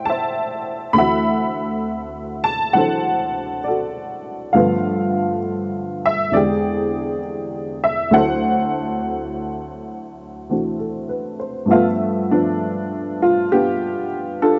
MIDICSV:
0, 0, Header, 1, 2, 480
1, 0, Start_track
1, 0, Key_signature, 1, "major"
1, 0, Tempo, 892857
1, 522, Time_signature, 4, 2, 24, 8
1, 7845, End_track
2, 0, Start_track
2, 0, Title_t, "Honky-tonk piano"
2, 0, Program_c, 0, 3
2, 0, Control_c, 0, 64, 127
2, 0, Note_on_c, 0, 45, 43
2, 0, Note_on_c, 0, 52, 46
2, 0, Note_on_c, 0, 57, 40
2, 0, Note_on_c, 0, 60, 41
2, 0, Note_on_c, 0, 64, 50
2, 0, Note_on_c, 0, 67, 50
2, 0, Note_on_c, 0, 72, 68
2, 0, Note_on_c, 0, 76, 59
2, 0, Note_on_c, 0, 78, 75
2, 0, Note_on_c, 0, 79, 88
2, 29, Note_on_c, 0, 81, 85
2, 51, Note_off_c, 0, 76, 0
2, 51, Note_on_c, 0, 76, 66
2, 53, Note_off_c, 0, 72, 0
2, 53, Note_on_c, 0, 72, 66
2, 501, Note_on_c, 0, 38, 53
2, 501, Note_on_c, 0, 83, 93
2, 506, Note_off_c, 0, 72, 0
2, 506, Note_off_c, 0, 76, 0
2, 507, Note_off_c, 0, 52, 0
2, 508, Note_on_c, 0, 50, 43
2, 513, Note_off_c, 0, 57, 0
2, 516, Note_on_c, 0, 52, 43
2, 517, Note_off_c, 0, 60, 0
2, 521, Note_off_c, 0, 45, 0
2, 521, Note_on_c, 0, 57, 46
2, 525, Note_on_c, 0, 60, 41
2, 526, Note_off_c, 0, 64, 0
2, 528, Note_off_c, 0, 78, 0
2, 528, Note_on_c, 0, 78, 68
2, 529, Note_on_c, 0, 76, 72
2, 530, Control_c, 0, 64, 0
2, 531, Note_off_c, 0, 81, 0
2, 531, Note_on_c, 0, 66, 51
2, 532, Note_off_c, 0, 79, 0
2, 533, Note_off_c, 0, 67, 0
2, 612, Control_c, 0, 64, 127
2, 1296, Note_off_c, 0, 83, 0
2, 1310, Note_on_c, 0, 81, 98
2, 1462, Note_off_c, 0, 78, 0
2, 1465, Note_off_c, 0, 52, 0
2, 1465, Note_off_c, 0, 76, 0
2, 1470, Note_on_c, 0, 78, 90
2, 1472, Note_off_c, 0, 60, 0
2, 1473, Note_on_c, 0, 52, 44
2, 1477, Note_on_c, 0, 54, 36
2, 1480, Note_off_c, 0, 81, 0
2, 1480, Note_on_c, 0, 60, 35
2, 1481, Note_off_c, 0, 66, 0
2, 1485, Note_on_c, 0, 62, 38
2, 1489, Note_on_c, 0, 66, 48
2, 1494, Note_on_c, 0, 69, 61
2, 1495, Note_on_c, 0, 72, 58
2, 1936, Note_off_c, 0, 78, 0
2, 1956, Note_on_c, 0, 74, 71
2, 1970, Note_off_c, 0, 66, 0
2, 1970, Note_off_c, 0, 69, 0
2, 1978, Note_on_c, 0, 66, 55
2, 1978, Note_on_c, 0, 69, 57
2, 2429, Note_off_c, 0, 72, 0
2, 2430, Note_off_c, 0, 66, 0
2, 2430, Note_off_c, 0, 69, 0
2, 2434, Note_off_c, 0, 38, 0
2, 2434, Note_off_c, 0, 50, 0
2, 2434, Note_on_c, 0, 77, 74
2, 2438, Note_off_c, 0, 57, 0
2, 2439, Note_off_c, 0, 52, 0
2, 2441, Note_off_c, 0, 54, 0
2, 2441, Note_on_c, 0, 43, 57
2, 2441, Note_on_c, 0, 53, 59
2, 2442, Note_on_c, 0, 50, 56
2, 2443, Note_off_c, 0, 60, 0
2, 2445, Note_off_c, 0, 62, 0
2, 2446, Note_on_c, 0, 57, 55
2, 2446, Note_on_c, 0, 65, 71
2, 2448, Note_on_c, 0, 59, 51
2, 2449, Note_on_c, 0, 69, 54
2, 2452, Control_c, 0, 64, 0
2, 2452, Note_on_c, 0, 71, 57
2, 2455, Note_off_c, 0, 74, 0
2, 2535, Control_c, 0, 64, 127
2, 2898, Note_off_c, 0, 77, 0
2, 3256, Note_on_c, 0, 76, 98
2, 3386, Note_off_c, 0, 69, 0
2, 3387, Note_off_c, 0, 71, 0
2, 3393, Note_off_c, 0, 50, 0
2, 3395, Note_on_c, 0, 40, 51
2, 3401, Note_on_c, 0, 50, 49
2, 3404, Note_off_c, 0, 43, 0
2, 3404, Note_off_c, 0, 53, 0
2, 3404, Note_on_c, 0, 74, 87
2, 3406, Note_off_c, 0, 57, 0
2, 3406, Note_off_c, 0, 65, 0
2, 3407, Note_off_c, 0, 59, 0
2, 3408, Note_on_c, 0, 56, 43
2, 3412, Control_c, 0, 64, 0
2, 3413, Note_off_c, 0, 76, 0
2, 3413, Note_on_c, 0, 60, 44
2, 3415, Note_on_c, 0, 68, 64
2, 3416, Note_on_c, 0, 67, 64
2, 3422, Note_on_c, 0, 79, 49
2, 3498, Control_c, 0, 64, 127
2, 3863, Note_off_c, 0, 74, 0
2, 4213, Note_on_c, 0, 76, 91
2, 4349, Note_off_c, 0, 68, 0
2, 4350, Note_off_c, 0, 67, 0
2, 4352, Note_off_c, 0, 50, 0
2, 4357, Note_off_c, 0, 60, 0
2, 4358, Note_on_c, 0, 38, 61
2, 4360, Note_on_c, 0, 50, 52
2, 4361, Note_off_c, 0, 40, 0
2, 4363, Note_on_c, 0, 54, 55
2, 4365, Note_on_c, 0, 60, 50
2, 4367, Note_off_c, 0, 56, 0
2, 4367, Note_on_c, 0, 64, 61
2, 4371, Note_off_c, 0, 76, 0
2, 4374, Note_off_c, 0, 79, 0
2, 4374, Control_c, 0, 64, 0
2, 4374, Note_on_c, 0, 78, 98
2, 4387, Note_on_c, 0, 69, 75
2, 4388, Note_on_c, 0, 72, 75
2, 4471, Control_c, 0, 64, 127
2, 5641, Note_off_c, 0, 60, 0
2, 5642, Note_on_c, 0, 52, 44
2, 5646, Note_on_c, 0, 57, 38
2, 5646, Note_on_c, 0, 66, 45
2, 5649, Note_on_c, 0, 60, 41
2, 5655, Note_on_c, 0, 62, 37
2, 5657, Note_off_c, 0, 66, 0
2, 5789, Note_off_c, 0, 78, 0
2, 5793, Note_off_c, 0, 69, 0
2, 5796, Note_off_c, 0, 72, 0
2, 5801, Note_on_c, 0, 69, 39
2, 5962, Note_on_c, 0, 71, 49
2, 6107, Note_off_c, 0, 69, 0
2, 6127, Note_on_c, 0, 72, 51
2, 6214, Note_off_c, 0, 71, 0
2, 6267, Note_on_c, 0, 43, 55
2, 6271, Note_off_c, 0, 57, 0
2, 6274, Note_on_c, 0, 53, 44
2, 6279, Note_on_c, 0, 57, 51
2, 6282, Note_off_c, 0, 52, 0
2, 6283, Note_off_c, 0, 38, 0
2, 6284, Note_off_c, 0, 50, 0
2, 6285, Note_off_c, 0, 54, 0
2, 6285, Note_off_c, 0, 60, 0
2, 6287, Note_off_c, 0, 64, 0
2, 6288, Note_off_c, 0, 62, 0
2, 6288, Note_on_c, 0, 59, 52
2, 6293, Note_off_c, 0, 57, 0
2, 6294, Control_c, 0, 64, 0
2, 6294, Note_on_c, 0, 76, 61
2, 6296, Note_on_c, 0, 65, 91
2, 6297, Note_off_c, 0, 59, 0
2, 6301, Note_on_c, 0, 57, 64
2, 6305, Note_on_c, 0, 59, 63
2, 6368, Note_off_c, 0, 65, 0
2, 6376, Note_off_c, 0, 72, 0
2, 6397, Control_c, 0, 64, 127
2, 6615, Note_off_c, 0, 53, 0
2, 6618, Note_off_c, 0, 59, 0
2, 6620, Note_on_c, 0, 62, 78
2, 6623, Note_on_c, 0, 53, 55
2, 6626, Note_on_c, 0, 59, 52
2, 7109, Note_on_c, 0, 65, 87
2, 7110, Note_off_c, 0, 62, 0
2, 7233, Note_off_c, 0, 57, 0
2, 7260, Note_off_c, 0, 65, 0
2, 7267, Note_off_c, 0, 59, 0
2, 7268, Note_on_c, 0, 67, 95
2, 7275, Note_on_c, 0, 59, 64
2, 7275, Note_on_c, 0, 62, 56
2, 7556, Note_off_c, 0, 53, 0
2, 7747, Note_off_c, 0, 62, 0
2, 7752, Note_off_c, 0, 67, 0
2, 7753, Note_on_c, 0, 69, 89
2, 7755, Note_on_c, 0, 62, 65
2, 7756, Note_on_c, 0, 65, 58
2, 7845, Note_off_c, 0, 43, 0
2, 7845, Note_off_c, 0, 59, 0
2, 7845, Note_off_c, 0, 62, 0
2, 7845, Note_off_c, 0, 65, 0
2, 7845, Note_off_c, 0, 69, 0
2, 7845, Note_off_c, 0, 76, 0
2, 7845, End_track
0, 0, End_of_file